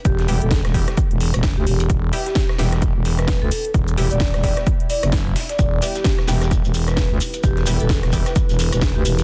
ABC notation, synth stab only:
X:1
M:4/4
L:1/8
Q:"Swing 16ths" 1/4=130
K:Em
V:1 name="Synth stab"
z [G,B,EG] z [G,B,EG] z4 | z [G,B,EG]2 [G,B,EG] z4 | z [G,B,EG] z [G,B,EG] z4 | z [G,B,EG]2 [G,B,EG] z4 |
z [G,B,EG] z [G,B,EG] z4 |]